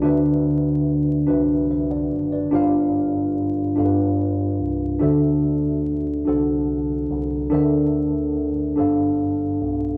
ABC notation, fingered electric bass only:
X:1
M:6/8
L:1/8
Q:3/8=48
K:Ddor
V:1 name="Fingered electric bass" clef=bass
D,,3 C,,2 ^F,,, | G,,,3 G,,,2 C,, | D,,3 C,,2 C,, | D,,3 G,,,2 B,,, |]